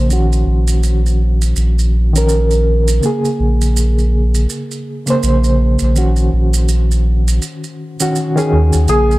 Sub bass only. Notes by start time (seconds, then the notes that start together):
Already playing: A#1
0.47 A#1
1.57 A#1
3.40 A#1
5.23 A#1
5.82 A#1
6.33 A#1
8.53 D#2
8.74 D#2
8.89 A#1